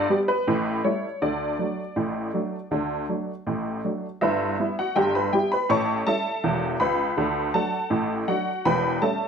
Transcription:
Already playing: D5
0.10 G3 B3 G4
0.28 B4
0.47 A1 A2
0.84 G3 A3 E4 C#5
1.22 D2 D3 D5
1.59 F#3 A3 D4
1.96 A1 A2
2.34 F#3 A3 D4
2.71 D2 D3
3.09 F#3 A3 D4
3.47 A1 A2
3.84 F#3 A3 D4
4.21 G1 G2 E4 B4 E5
4.60 G3 B3 E4
4.79 F#4 F#5
4.96 G1 G2 G4 G5
5.15 B4 B5
5.33 G3 B3 E4 G4 G5
5.52 B4 B5
5.69 A1 A2 C#5 A5 C#6
6.07 G3 C#4 E4 A4 E5 A5
6.44 E1 E2
6.80 C#2 B4 B5
7.17 D2 D3
7.54 F#3 A3 D4 A4 F#5 A5
7.90 A1 A2
8.28 F#3 A3 D4 F#4 F#5
8.65 E1 E2 B4 G5 B5
9.02 G3 A3 C#4 A4 E5 A5

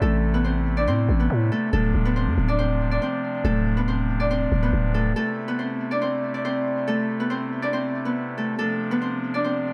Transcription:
Already playing: C3 A3 C4 D4 E4 C5 D5
0.02 A1 A3 A4
0.34 B3 B4
0.44 C4 C5
0.77 D4 D5
0.87 A2 C4 C5
1.09 A1
1.20 B3 B4
1.30 A2
1.52 A3 A4
1.73 D1 C3 F3 A3 D4 A4
1.94 D1
2.05 B3 B4
2.16 C4 C5
2.27 F2
2.37 D1
2.48 D4 D5
2.59 C4 C5
2.91 D4 D5
3.02 C4 C5
3.44 D1 A3 A4
3.77 B3 B4
3.88 C4 C5
4.20 D4 D5
4.31 C4 C5
4.52 D1
4.63 B3 B4
4.73 D1
4.94 A3 A4
5.16 C3 A3 E4 A4
5.48 B3 B4
5.59 C4 C5
5.91 D4 D5
6.02 C4 C5
6.34 D4 D5
6.45 C4 C5
6.88 A3 A4
7.20 B3 B4
7.30 C4 C5
7.62 D4 D5
7.73 C4 C5
8.05 B3 B4
8.38 A3 A4
8.59 C3 F3 A3 D4 A4
8.91 B3 B4
9.01 C4 C5
9.34 D4 D5
9.44 C4 C5

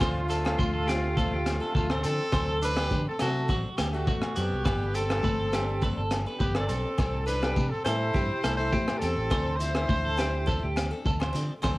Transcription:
Already playing: A3 F4
0.00 D2 F3 C4 D4 A4 C5, kick, cross-stick, low agogo, shekere
0.28 F3 C4 D4 A4, closed hi-hat, shekere
0.45 C4 D4 A4, cross-stick, low agogo
0.59 D2 C5, kick, high conga, shekere
0.73 A4
0.87 F3 C4 D4 G4 A4, cross-stick, closed hi-hat, low agogo, shekere
1.17 F3 C4 D4 A4, kick, muted conga, high conga, shekere
1.31 D2 G4
1.46 cross-stick, closed hi-hat, low agogo, shekere
1.60 C4 D4 A4
1.75 D2 A3 F4 A4, kick, high conga, shekere
1.90 C4 A4 C5, cross-stick, low agogo
2.03 D3 F3 C4 D4 A4, closed hi-hat, muted conga, shekere
2.32 D2 F#3 C4 D4 A4 C5, kick, cross-stick, low agogo, shekere
2.48 A4
2.61 F#3 C4 D4 A4 B4, closed hi-hat, muted conga, shekere
2.76 D4 G4 A4, muted steel-string acoustic guitar stroke, cross-stick, low agogo
2.91 D3, kick, high conga, shekere
3.07 C4 A4
3.19 C3 F#3 A3 C4 D4 F#4 A4, cross-stick, closed hi-hat, low agogo, shekere
3.23 A4
3.48 A1 F#3 C4 D4 F#4 A4, kick, muted conga, shekere
3.78 D2 G4, cross-stick, closed hi-hat, high conga, low agogo, shekere
3.93 A3 D4 F#4 A4, muted steel-string acoustic guitar stroke
4.07 F#4, kick, high conga, shekere
4.22 cross-stick, low agogo
4.36 F#2 F#3 B3 C4 D4 F#4 G4 A4, closed hi-hat, shekere
4.52 C2
4.64 G1 G3 B3 D4 A4 B4, kick, cross-stick, muted conga, low agogo, shekere
4.94 G3 B3 C4 D4 G4 A4, closed hi-hat, shekere
5.09 B3 D4 A4, cross-stick, low agogo
5.23 G1 B4, kick, high conga, shekere
5.40 A4
5.52 G3 B3 D4 G4 A4, cross-stick, closed hi-hat, low agogo, shekere
5.82 G3 B3 D4 A4 B4, kick, muted conga, high conga, shekere
5.97 G1 A4
6.11 cross-stick, closed hi-hat, low agogo, shekere
6.26 B3 D4 A4 B4
6.39 G1 B3 G4 B4, kick, high conga, shekere
6.55 C4 A4 D5, cross-stick, low agogo
6.66 B1 G3 B3 C4 D4 A4, closed hi-hat, shekere
6.70 A4, muted conga
6.98 C2 G3 C4 E4 A4, muted clean electric guitar stroke, kick, cross-stick, muted conga, low agogo, shekere
7.13 A4
7.25 G3 C4 D4 E4 A4 B4, closed hi-hat, muted conga, shekere
7.41 C4 E4 G4 A4, cross-stick, low agogo
7.56 C3, kick, high conga, shekere
7.69 C4 A4
7.84 A2 G3 C4 E4 A4 C5, cross-stick, closed hi-hat, low agogo, shekere
8.14 G2 G3 C4 E4 G4 A4, kick, muted conga, shekere
8.44 C2 A4, cross-stick, closed hi-hat, high conga, low agogo, shekere
8.55 E4 A4 C5
8.59 C4 E4
8.72 G4, kick, high conga, shekere
8.88 cross-stick, low agogo
8.98 G3 C4 G4 A4, closed hi-hat, shekere
9.02 E2 C4 E4 A4, muted conga
9.16 A1
9.30 D2 F3 C4 D4 A4 C5, kick, cross-stick, low agogo, shekere
9.56 F3 E4 C5, muted conga, shekere
9.60 C4 D4 A4, closed hi-hat
9.74 C4 D4 A4, cross-stick, low agogo
9.89 D2 C5, kick, high conga, shekere
10.05 A4
10.17 F3 C4 D4 G4 A4, cross-stick, closed hi-hat, low agogo, shekere
10.46 F3 C4 D4 A4, kick, muted conga, high conga, shekere
10.63 D2 G4
10.76 cross-stick, closed hi-hat, low agogo, shekere
10.91 C4 D4 A4
11.05 D2 A4, kick, high conga, shekere
11.20 C5, cross-stick, low agogo
11.33 D3 F3 C4 D4 A4, closed hi-hat, muted conga, shekere
11.62 D2 F#3 C4 D4 A4 C5, kick, cross-stick, low agogo, shekere

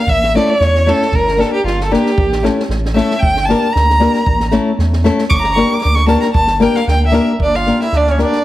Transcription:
Already playing: F5
0.07 A1 E5, kick
0.23 snare
0.34 A3 C#4 E4 A4 D5, snare
0.49 C#5
0.60 E2, snare
0.75 snare
0.86 A3 C#4 E4 A4, snare
1.02 snare
1.12 G1 A#4, kick
1.28 snare
1.37 A#3 D4 G4 A4 A#4
1.41 snare
1.54 G4
1.64 G1 F4, snare
1.80 A4, snare
1.91 A#3 D4 G4 A#4, snare
2.06 snare
2.18 A1, kick
2.32 snare
2.43 A3 C#4 E4 A4, snare
2.60 snare
2.69 A1, snare
2.85 snare
2.94 A3 C#4 E4 A4 E5, snare
3.11 snare
3.19 G1 G5, kick
3.37 snare
3.45 A#3 D4 A5
3.50 G4 A#4, snare
3.73 D2 A#5, snare
3.90 snare
4.00 A#3 D4 G4 A#4, snare
4.14 snare
4.26 A1, kick
4.40 snare
4.51 A3 C#4 E4 A4, snare
4.78 E2, snare
4.93 snare
5.04 A3 C#4 E4 A4, snare
5.18 snare
5.30 G1 C#6 D6, kick
5.35 D6
5.41 A#5, snare
5.54 A#3 D4 G4 C#6, snare
5.58 A#4
5.70 D6
5.81 D6, snare
5.85 D2
5.95 C#6, snare
6.07 A#3 D4 G4 A#4 A5, snare
6.21 A#5, snare
6.33 G1 A5, kick
6.47 snare
6.60 A#3 D4 G4 A#4 G5, snare
6.76 F5, snare
6.87 D2 G5, snare
7.07 E5
7.12 A#3 D4 G4 A#4, snare
7.39 G1, kick
7.43 D4 D5
7.54 F4 F5, snare
7.67 A#3 D4 G4 A#4, snare
7.81 E4 E5, snare
7.92 D2 D4, snare
7.97 D5
8.07 C#4, snare
8.11 C#5
8.18 A#3 D4 G4 A#4, snare
8.22 D4 D5
8.32 snare

